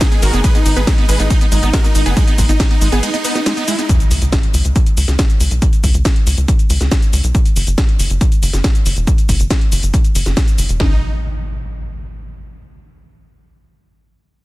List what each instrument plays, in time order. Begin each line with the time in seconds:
Already playing: string section G#3 B3 D#4
0.01 acid bass D#4, supersaw synth G#4, synth pluck G#4, kick, snare, closed hi-hat, ride, shaker
0.12 acid bass B3, supersaw synth G#4, synth pluck G#4, closed hi-hat, shaker
0.22 analog synth bass G#1, acid bass G#3, supersaw synth F#4 A#4, synth pluck A#4, open hi-hat, shaker
0.33 analog synth bass F#1, acid bass B3, synth pluck G#4, supersaw synth G#4, closed hi-hat, shaker
0.44 acid bass G#3, supersaw synth G#4 B4, synth pluck B4, kick, closed hi-hat, ride, shaker
0.55 acid bass B3, supersaw synth D#4, synth pluck D#4, closed hi-hat, shaker
0.66 analog synth bass G#1, acid bass D#4, synth pluck D#4, supersaw synth D#4, open hi-hat, shaker
0.76 analog synth bass G#1, acid bass B3, supersaw synth G#4 B4, synth pluck B4, closed hi-hat, shaker
0.87 acid bass G#3, synth pluck D#4, supersaw synth D#4, kick, snare, closed hi-hat, ride, shaker
0.98 acid bass B3, supersaw synth D#4, synth pluck D#4, closed hi-hat
1.09 analog synth bass G#1, acid bass G#3, supersaw synth G#4 B4, synth pluck B4, open hi-hat, shaker
1.20 analog synth bass G#1, acid bass B3, supersaw synth D#4, synth pluck D#4, closed hi-hat, shaker
1.30 supersaw synth D#4, synth pluck D#4, acid bass D#4, kick, closed hi-hat, ride, shaker
1.41 acid bass B3, closed hi-hat, shaker
1.52 analog synth bass G#1, acid bass G#3, supersaw synth D#4, synth pluck D#4, open hi-hat, shaker
1.63 analog synth bass G#1, acid bass B3, supersaw synth D#4, synth pluck D#4, closed hi-hat, shaker
1.73 acid bass G#3, supersaw synth F#4 A#4, synth pluck A#4, kick, snare, closed hi-hat, ride, shaker
1.84 acid bass B3, synth pluck D#4, supersaw synth D#4, closed hi-hat, shaker
1.95 analog synth bass G#1, synth pluck D#4, supersaw synth D#4, acid bass D#4, open hi-hat, shaker
2.06 analog synth bass F#1, supersaw synth B3 G#4, acid bass B3, synth pluck G#4, closed hi-hat, shaker
2.17 acid bass G#3, supersaw synth D#4, synth pluck D#4, kick, closed hi-hat, ride, shaker
2.27 acid bass B3, supersaw synth D#4, synth pluck D#4, closed hi-hat, shaker
2.38 analog synth bass G#1, acid bass G#3, kick, open hi-hat, shaker
2.49 analog synth bass G#1, acid bass B3, supersaw synth D#4, synth pluck D#4, closed hi-hat, shaker
2.60 acid bass D#4, kick, snare, closed hi-hat, ride, shaker
2.71 acid bass B3, supersaw synth D#4, synth pluck D#4, closed hi-hat
2.81 analog synth bass G#1, acid bass G#3, supersaw synth D#4, synth pluck D#4, open hi-hat, shaker
2.92 analog synth bass G#1, supersaw synth B3 G#4, acid bass B3, synth pluck G#4, closed hi-hat, shaker
3.03 acid bass G#3, supersaw synth D#4, synth pluck D#4, closed hi-hat, ride, shaker
3.14 acid bass B3, supersaw synth D#4, synth pluck D#4, closed hi-hat, shaker
3.24 supersaw synth B3 D#4, acid bass D#4, synth pluck D#4, open hi-hat, shaker
3.35 acid bass B3, synth pluck D#4, supersaw synth D#4, snare, closed hi-hat, shaker
3.46 acid bass G#3, synth pluck D#4, supersaw synth D#4, snare, closed hi-hat, ride, shaker
3.57 acid bass B3, synth pluck D#4, supersaw synth D#4, closed hi-hat, shaker
3.68 supersaw synth G#3 E4, acid bass G#3, synth pluck E4, open hi-hat, shaker
3.78 acid bass B3, supersaw synth D#4, synth pluck D#4, closed hi-hat, shaker
3.89 kick, closed hi-hat, impact, shaker
4.00 closed hi-hat, shaker
4.11 analog synth bass C#2, open hi-hat, shaker
4.22 analog synth bass C#2, closed hi-hat, shaker
4.32 kick, snare, closed hi-hat, shaker
4.43 closed hi-hat
4.54 analog synth bass C#2, open hi-hat, shaker
4.65 analog synth bass C#2, closed hi-hat, shaker
4.76 kick, closed hi-hat, shaker
4.86 closed hi-hat, shaker
4.97 analog synth bass C#2, open hi-hat, shaker
5.08 analog synth bass C#2, snare, closed hi-hat, shaker
5.19 kick, snare, closed hi-hat, shaker
5.30 closed hi-hat, shaker
5.40 analog synth bass C#2, open hi-hat, shaker
5.51 analog synth bass B1, closed hi-hat, shaker
5.62 kick, closed hi-hat, shaker
5.73 closed hi-hat, shaker
5.84 analog synth bass C#2, kick, open hi-hat, shaker
5.94 analog synth bass C#2, closed hi-hat, shaker
6.05 kick, snare, closed hi-hat, shaker
6.16 closed hi-hat
6.27 analog synth bass C#2, open hi-hat, shaker
6.38 analog synth bass C#2, closed hi-hat, shaker
6.48 kick, closed hi-hat, shaker
6.59 closed hi-hat, shaker
6.70 analog synth bass C#2, open hi-hat, shaker
6.81 analog synth bass C#2, snare, closed hi-hat, shaker
6.91 kick, snare, closed hi-hat, shaker
7.02 closed hi-hat, shaker
7.13 analog synth bass C#2, open hi-hat, shaker
7.24 analog synth bass B1, closed hi-hat, shaker
7.35 kick, closed hi-hat, shaker
7.46 closed hi-hat, shaker
7.56 analog synth bass F#1, open hi-hat, shaker
7.67 analog synth bass F#1, closed hi-hat, shaker
7.78 kick, snare, closed hi-hat, shaker
7.89 closed hi-hat
7.99 analog synth bass F#1, open hi-hat, shaker
8.10 analog synth bass F#1, closed hi-hat, shaker
8.21 kick, closed hi-hat, shaker
8.32 closed hi-hat, shaker
8.43 analog synth bass F#1, open hi-hat, shaker
8.53 analog synth bass F#1, snare, closed hi-hat, shaker
8.64 kick, snare, closed hi-hat, shaker
8.75 closed hi-hat, shaker
8.86 analog synth bass F#1, open hi-hat, shaker
8.97 analog synth bass E1, closed hi-hat, shaker
9.07 kick, closed hi-hat, shaker
9.18 closed hi-hat, shaker
9.29 analog synth bass F#1, kick, open hi-hat, shaker
9.40 analog synth bass F#1, closed hi-hat, shaker
9.50 kick, snare, closed hi-hat, shaker
9.61 closed hi-hat
9.72 analog synth bass F#1, open hi-hat, shaker
9.83 analog synth bass F#1, closed hi-hat, shaker
9.94 kick, closed hi-hat, shaker
10.04 closed hi-hat, shaker
10.15 analog synth bass F#1, open hi-hat, shaker
10.26 analog synth bass F#1, snare, closed hi-hat, shaker
10.37 kick, snare, closed hi-hat, shaker
10.48 closed hi-hat, shaker
10.58 analog synth bass F#1, open hi-hat, shaker
10.69 analog synth bass E1, closed hi-hat, shaker
10.80 supersaw synth D#4, kick, snare, impact